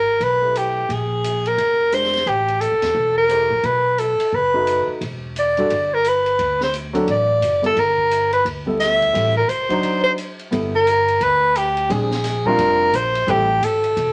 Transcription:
Already playing: upright bass G#1, soprano saxophone A#4
0.20 upright bass B1, soprano saxophone B4, kick, ride
0.41 grand piano A3 E4 G4 B4
0.55 soprano saxophone G4, hi-hat pedal, ride
0.89 upright bass A#1, soprano saxophone G#4, kick, ride
1.24 hi-hat pedal, ride
1.46 soprano saxophone A#4, ride
1.58 upright bass F1, kick, ride
1.92 grand piano G#3 D4 G4 C5, soprano saxophone C5, hi-hat pedal, ride
2.04 snare
2.13 snare, ride
2.26 upright bass A1, soprano saxophone G4, kick, ride
2.48 ride
2.61 soprano saxophone A4, hi-hat pedal, ride
2.72 upright bass C2
2.82 upright bass E2, snare, ride
2.95 upright bass E1, kick
3.17 soprano saxophone A#4
3.29 grand piano A3 E4 G4 C5, hi-hat pedal, ride
3.50 upright bass A#1
3.63 upright bass B1, soprano saxophone B4, kick, ride
3.98 soprano saxophone A4, hi-hat pedal, ride
4.19 muted upright bass stroke, ride
4.32 upright bass F#1, soprano saxophone B4, kick
4.53 grand piano A3 D#4 F#4 B4
4.67 hi-hat pedal, ride
4.87 muted upright bass stroke
5.01 upright bass E1, kick, ride
5.36 soprano saxophone D5, hi-hat pedal, ride
5.57 grand piano G3 D4 F#4 A4, ride
5.70 upright bass G1, kick, ride
5.94 soprano saxophone A#4
6.04 soprano saxophone B4, hi-hat pedal, ride
6.26 ride
6.39 upright bass D2, kick, ride
6.61 soprano saxophone C5, snare
6.74 hi-hat pedal, ride
6.93 grand piano F#3 C4 D4 A4, ride
7.07 upright bass A1, kick, ride
7.11 soprano saxophone D5
7.41 upright bass F#1, hi-hat pedal, ride
7.62 grand piano G3 B3 E4 A4, ride
7.66 soprano saxophone A4
7.76 upright bass G1, soprano saxophone A#4, kick, ride
7.98 kick
8.11 hi-hat pedal, ride
8.33 soprano saxophone B4, ride
8.45 upright bass D2, kick, ride
8.66 grand piano G3 B3 E4 A4
8.80 soprano saxophone E5, snare, hi-hat pedal, ride
9.01 kick, ride
9.13 upright bass A1, grand piano G3 C4 E4 A4, kick, ride
9.37 soprano saxophone A#4
9.48 upright bass C2, soprano saxophone C5, hi-hat pedal, ride
9.69 grand piano F#3 D4 D#4 C5, kick, ride
9.83 kick, ride
10.04 soprano saxophone C5
10.18 hi-hat pedal, ride
10.39 ride
10.51 upright bass G1, grand piano G3 B3 E4 A4, kick, ride
10.75 soprano saxophone A#4
10.87 hi-hat pedal, ride
11.08 ride
11.21 upright bass D2, soprano saxophone B4, kick, ride
11.55 soprano saxophone G4, hi-hat pedal, ride
11.77 ride
11.89 upright bass A#1, grand piano G3 C4 D4 G#4, soprano saxophone G#4, kick, ride
12.11 snare
12.24 snare, hi-hat pedal, ride
12.45 grand piano G3 C4 D4 F4, soprano saxophone A#4, kick
12.58 upright bass F1, kick, ride
12.92 upright bass A#1, soprano saxophone C5, hi-hat pedal, ride
13.15 ride
13.27 upright bass A1, grand piano G3 C4 E4 A4, soprano saxophone G4, kick, ride
13.61 upright bass G#1, soprano saxophone A4, hi-hat pedal, ride
13.84 ride
13.97 upright bass E1, kick, ride

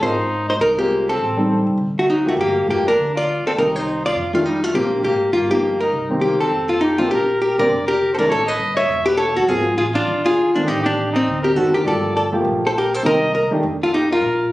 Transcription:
0.00 upright bass G#1, grand piano G#3 C4 F4 A#4, trumpet D#4, hollow-body jazz guitar C5
0.48 trumpet D#4, hollow-body jazz guitar C5
0.60 upright bass C2, trumpet D#4, hollow-body jazz guitar A#4
0.78 grand piano G#3 C4 F4 A#4, trumpet A#3, hollow-body jazz guitar G4
1.09 trumpet C4, hollow-body jazz guitar A4
1.19 upright bass A1
1.37 grand piano G3 C4 D#4 A4
1.67 upright bass C2
1.78 upright bass D2
1.98 trumpet A3, hollow-body jazz guitar F#4
2.10 trumpet F#3, hollow-body jazz guitar D#4
2.25 grand piano F3 A3 A#3 G4, hollow-body jazz guitar F#4
2.29 trumpet A3
2.37 upright bass G1, trumpet A#3, hollow-body jazz guitar G4
2.66 upright bass F1, grand piano F3 A3 A#3 G4, trumpet A#3, hollow-body jazz guitar G4
2.86 trumpet D4, hollow-body jazz guitar A#4
2.96 upright bass D2
3.15 trumpet F4, hollow-body jazz guitar D5
3.45 trumpet C4, hollow-body jazz guitar A4, muted upright bass stroke
3.56 upright bass C2, grand piano D#3 A#3 C4 G4, trumpet D#4, hollow-body jazz guitar A#4
3.76 trumpet D#4, hollow-body jazz guitar C5
4.05 trumpet F4, hollow-body jazz guitar D5
4.15 upright bass F2
4.33 grand piano D#3 A3 D4 G4, trumpet A3, hollow-body jazz guitar F4
4.46 trumpet G3, hollow-body jazz guitar D#4
4.63 trumpet A3, hollow-body jazz guitar F4
4.74 upright bass A#1, grand piano D3 A#3 C4 G4, trumpet A#3, hollow-body jazz guitar G4
5.03 upright bass G#1, trumpet A#3, hollow-body jazz guitar G4
5.33 upright bass G1, trumpet A#3, hollow-body jazz guitar F4
5.50 grand piano F3 B3 D#4 G4, trumpet A#3, hollow-body jazz guitar G4
5.80 trumpet D#4, hollow-body jazz guitar A#4
5.93 upright bass C2
6.09 grand piano D#3 A#3 C4 G4
6.21 trumpet A#3, hollow-body jazz guitar G4
6.39 trumpet C4, hollow-body jazz guitar A4, muted upright bass stroke
6.51 upright bass F2
6.69 hollow-body jazz guitar F4, trumpet A4
6.81 hollow-body jazz guitar D#4, trumpet G4
6.98 grand piano D3 A#3 C4 G4, hollow-body jazz guitar F4, trumpet A4
7.10 upright bass A#1, hollow-body jazz guitar G4, trumpet A#4
7.42 hollow-body jazz guitar G4, trumpet A#4
7.58 upright bass B1, grand piano D3 A#3 C4 G4, hollow-body jazz guitar A#4, trumpet D5
7.70 upright bass F1
7.87 hollow-body jazz guitar G4, trumpet A#4
8.13 hollow-body jazz guitar A4, trumpet C5
8.18 grand piano D#3 A3 C#4 E4, hollow-body jazz guitar A#4, trumpet D5
8.29 upright bass A1, hollow-body jazz guitar A4, trumpet C#5
8.46 hollow-body jazz guitar B4, trumpet D#5
8.59 upright bass G1
8.76 hollow-body jazz guitar C#5, trumpet E5
8.89 upright bass E1
9.06 hollow-body jazz guitar G4, trumpet B4
9.17 hollow-body jazz guitar A4, trumpet C#5
9.36 upright bass D#2, hollow-body jazz guitar F#4, trumpet A4
9.47 upright bass G#1, grand piano F3 A#3 C4 G#4, hollow-body jazz guitar F4, trumpet G#4
9.77 upright bass A1, hollow-body jazz guitar F4, trumpet G#4
9.93 hollow-body jazz guitar D4, trumpet F4
10.07 upright bass D#2
10.25 hollow-body jazz guitar F4, trumpet G#4
10.53 grand piano D#3 A3 C4 D4, hollow-body jazz guitar D4, trumpet F4
10.66 upright bass A1, hollow-body jazz guitar D#4, trumpet G4
10.82 hollow-body jazz guitar D4, trumpet G4
11.12 hollow-body jazz guitar C4, trumpet D#4
11.26 upright bass D2
11.42 hollow-body jazz guitar G4, trumpet A#4
11.55 upright bass F#1, grand piano D#3 C4 D4 F#4, hollow-body jazz guitar F#4, trumpet A4
11.72 hollow-body jazz guitar G4, trumpet A#4
11.85 upright bass G1, grand piano F3 A3 A#3 G4, hollow-body jazz guitar A4, trumpet D5
12.16 hollow-body jazz guitar A4, trumpet D5
12.32 grand piano F3 A3 A#3 G4
12.45 upright bass A#1
12.66 hollow-body jazz guitar A4, trumpet C5
12.77 hollow-body jazz guitar G4, trumpet A#4
12.94 hollow-body jazz guitar A4, trumpet C5
13.03 upright bass C2, grand piano D#3 A#3 C4 G4, hollow-body jazz guitar A#4, trumpet D#5
13.34 hollow-body jazz guitar A#4, trumpet D#5
13.51 grand piano D#3 A3 D4 G4, muted upright bass stroke
13.63 upright bass F2
13.83 hollow-body jazz guitar F4, trumpet A4
13.93 hollow-body jazz guitar D#4, trumpet G4
14.11 hollow-body jazz guitar F4, trumpet A#4
14.21 upright bass A#1

